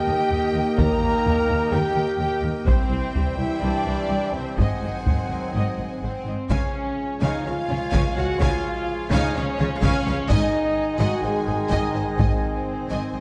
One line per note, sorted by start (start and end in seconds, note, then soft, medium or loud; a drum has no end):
0.00 2.64 D#3 loud
0.00 2.64 A#3 loud
0.00 2.68 D#4 loud
0.00 0.59 G4 loud
0.00 4.58 G4 loud
0.00 2.68 A#4 loud
0.00 2.67 D#5 medium
0.00 2.68 D#5 loud
0.00 0.78 G5 loud
0.00 0.79 G5 loud
0.00 2.63 G5 medium
0.06 0.14 D#2 medium
0.06 0.15 D#2 medium
0.06 0.16 A#4 medium
0.29 0.37 D#2 medium
0.29 0.39 D#2 medium
0.29 0.40 G4 medium
0.54 0.62 D#2 medium
0.54 0.64 D#2 medium
0.54 0.63 A#4 medium
0.76 0.85 D#2 loud
0.76 0.87 D#2 loud
0.76 1.70 A#4 loud
0.76 1.00 A#4 loud
0.76 1.71 A#5 loud
0.76 taiko loud
1.00 1.08 D#2 medium
1.00 1.11 D#2 medium
1.00 1.10 A#4 medium
1.24 1.32 D#2 medium
1.24 1.34 D#2 medium
1.24 1.33 G4 medium
1.24 taiko low medium
1.47 1.55 D#2 medium
1.47 1.57 D#2 medium
1.47 1.57 A#4 medium
1.71 1.80 D#2 loud
1.71 1.81 D#2 loud
1.71 2.20 G4 loud
1.71 1.94 A#4 loud
1.71 2.18 G5 loud
1.71 2.19 G5 loud
1.95 2.03 D#2 medium
1.95 2.04 D#2 medium
1.95 2.04 A#4 medium
2.18 2.26 D#2 medium
2.18 2.27 D#2 medium
2.18 2.27 G4 loud
2.18 2.44 G4 loud
2.18 2.43 G5 loud
2.42 2.50 D#2 medium
2.42 2.51 D#2 medium
2.42 2.52 A#4 medium
2.65 2.73 C2 loud
2.65 2.75 C2 loud
2.65 4.54 E3 loud
2.65 4.54 G3 loud
2.65 3.35 C4 loud
2.65 4.57 E4 loud
2.65 3.34 C5 loud
2.65 4.58 C5 loud
2.65 2.89 C5 loud
2.65 3.34 C5 loud
2.65 4.54 E5 medium
2.65 4.57 G5 loud
2.65 4.55 G5 loud
2.65 taiko loud
2.89 2.97 C2 medium
2.89 2.98 C2 medium
2.89 2.99 C5 medium
3.13 3.21 C2 medium
3.13 3.22 C2 medium
3.13 3.23 G4 medium
3.13 taiko low medium
3.37 3.45 C2 medium
3.37 3.62 E4 loud
3.37 3.46 C5 medium
3.37 3.61 E5 loud
3.37 3.62 E5 loud
3.61 3.70 C2 medium
3.61 4.34 D4 loud
3.61 3.85 C5 medium
3.61 4.33 D5 medium
3.61 4.34 D5 loud
3.85 3.93 C2 medium
3.85 3.94 C2 medium
3.85 3.94 C5 medium
4.08 4.16 C2 medium
4.08 4.19 C2 medium
4.08 4.17 G4 medium
4.33 4.41 C2 medium
4.33 4.43 C2 medium
4.33 4.57 C4 loud
4.33 4.56 C5 medium
4.33 4.57 C5 loud
4.33 4.43 C5 medium
4.57 4.66 G#1 medium
4.57 4.65 G#2 medium
4.57 6.23 D#3 medium
4.57 6.23 F#3 medium
4.57 6.00 C4 loud
4.57 6.27 D#4 loud
4.57 6.27 G#4 medium
4.57 6.00 C5 medium
4.57 6.27 D#5 medium
4.57 4.81 D#5 medium
4.57 6.27 F#5 loud
4.57 6.28 F#5 medium
4.57 6.28 G#5 medium
4.57 taiko loud
4.82 4.91 G#1 medium
4.82 4.90 G#2 medium
4.82 4.91 D#5 medium
5.05 5.14 G#1 medium
5.05 5.13 G#2 medium
5.05 5.14 C5 medium
5.05 taiko low medium
5.30 5.38 G#1 medium
5.30 5.38 G#2 medium
5.30 5.38 D#5 medium
5.54 5.62 G#1 medium
5.54 5.63 G#2 medium
5.54 5.77 D#5 medium
5.78 5.86 G#1 medium
5.78 5.87 G#2 medium
5.78 5.87 D#5 medium
6.01 6.11 G#1 medium
6.01 6.11 G#2 medium
6.01 6.48 C4 loud
6.01 6.47 C5 medium
6.01 6.11 C5 medium
6.26 6.34 G#1 medium
6.26 6.35 G#2 medium
6.26 6.35 D#5 medium
6.50 6.58 C#2 medium
6.50 6.59 C#3 loud
6.50 10.26 F3 medium
6.50 10.26 G#3 medium
6.50 7.21 C#4 loud
6.50 10.26 F4 medium
6.50 10.26 G#4 medium
6.50 10.26 C#5 medium
6.50 6.73 C#5 medium
6.50 7.21 C#5 medium
6.50 6.72 F5 medium
6.50 6.73 F5 medium
6.50 10.26 G#5 loud
6.50 6.73 G#5 loud
6.50 taiko loud
7.21 7.30 C#2 medium
7.21 7.29 C#3 loud
7.21 7.46 D#4 loud
7.21 7.44 C#5 medium
7.21 7.46 D#5 loud
7.21 7.44 F5 medium
7.21 7.45 F5 loud
7.21 7.44 G#5 medium
7.45 7.54 C#2 medium
7.45 7.54 C#3 medium
7.45 8.16 F4 loud
7.45 7.53 C#5 medium
7.45 7.54 C#5 medium
7.45 7.54 F5 medium
7.45 8.17 F5 loud
7.45 7.54 F5 medium
7.69 7.78 C#2 medium
7.69 7.77 C#3 medium
7.69 7.77 G#4 medium
7.69 7.77 C#5 medium
7.69 7.77 F5 medium
7.92 8.01 C#2 loud
7.92 8.01 C#3 loud
7.92 8.15 C#5 loud
7.92 8.14 F5 medium
7.92 8.15 F5 loud
7.92 8.15 G#5 loud
7.92 taiko medium
8.15 8.25 C#2 medium
8.15 8.24 C#3 medium
8.15 8.41 F#4 loud
8.15 8.24 C#5 medium
8.15 8.25 C#5 medium
8.15 8.23 F5 medium
8.15 8.25 F5 medium
8.15 8.41 F#5 loud
8.39 8.48 C#2 loud
8.39 8.48 C#3 loud
8.39 9.12 F4 loud
8.39 8.62 C#5 loud
8.39 8.62 F5 loud
8.39 8.63 F5 loud
8.39 9.12 F5 loud
8.39 8.63 G#5 loud
8.39 taiko loud
9.11 9.20 C#2 loud
9.11 9.20 C#3 loud
9.11 9.35 D#4 loud
9.11 9.33 C#5 loud
9.11 9.35 D#5 loud
9.11 9.34 F5 loud
9.11 9.34 G#5 loud
9.34 9.45 C#2 medium
9.34 9.44 C#3 medium
9.34 9.82 C#4 loud
9.34 9.42 C#5 medium
9.34 9.82 C#5 loud
9.34 9.44 C#5 loud
9.34 9.43 F5 medium
9.34 9.45 F5 medium
9.58 9.68 C#2 medium
9.58 9.68 C#3 loud
9.58 9.68 G#4 medium
9.58 9.66 C#5 medium
9.58 9.68 C#5 loud
9.58 9.66 F5 loud
9.81 9.91 C#2 loud
9.81 9.91 C#3 loud
9.81 10.29 C#4 loud
9.81 10.04 C#5 loud
9.81 10.29 C#5 loud
9.81 10.04 F5 loud
9.81 10.05 F5 loud
9.81 10.05 G#5 loud
9.81 taiko medium
10.05 10.14 C#2 medium
10.05 10.15 C#3 medium
10.05 10.13 C#5 medium
10.05 10.15 C#5 loud
10.05 10.13 F5 medium
10.05 10.15 F5 loud
10.05 taiko rim medium
10.28 10.37 G#1 loud
10.28 10.39 G#2 loud
10.28 13.20 D#3 loud
10.28 13.20 G#3 loud
10.28 13.20 D#4 loud
10.28 11.01 D#4 loud
10.28 13.20 G#4 loud
10.28 10.51 D#5 loud
10.28 13.20 D#5 loud
10.28 10.52 D#5 loud
10.28 11.01 D#5 loud
10.28 13.20 G#5 loud
10.28 10.52 G#5 loud
10.28 taiko loud
10.99 11.07 G#1 loud
10.99 11.08 G#2 loud
10.99 11.24 F#4 loud
10.99 11.21 D#5 loud
10.99 11.22 D#5 loud
10.99 11.24 F#5 loud
10.99 11.23 G#5 loud
10.99 taiko rim soft
11.22 11.31 G#1 medium
11.22 11.32 G#2 medium
11.22 11.72 G#4 loud
11.22 11.32 C5 medium
11.22 11.30 D#5 medium
11.22 11.31 D#5 medium
11.22 11.70 G#5 loud
11.46 11.56 G#1 medium
11.46 11.55 G#2 medium
11.46 11.55 G#4 medium
11.46 11.55 C5 medium
11.46 11.54 D#5 medium
11.69 11.78 G#1 medium
11.69 11.79 G#2 loud
11.69 12.06 D#4 loud
11.69 11.93 D#5 loud
11.69 12.19 D#5 loud
11.69 11.93 G#5 medium
11.69 taiko medium
11.93 12.01 G#1 medium
11.93 12.04 G#2 medium
11.93 12.02 C5 medium
11.93 12.02 D#5 medium
11.93 12.03 D#5 medium
12.17 12.26 G#1 loud
12.17 12.27 G#2 medium
12.17 13.20 C4 loud
12.17 13.20 C5 medium
12.17 12.41 D#5 medium
12.17 12.42 D#5 medium
12.17 12.42 G#5 medium
12.17 taiko loud
12.90 12.98 G#1 medium
12.90 13.00 G#2 medium
12.90 13.12 D#5 medium
12.90 13.13 D#5 medium
12.90 13.13 G#5 medium
12.90 taiko rim soft
13.13 13.20 G#1 medium
13.13 13.20 G#2 medium
13.13 13.20 C5 medium
13.13 13.20 D#5 medium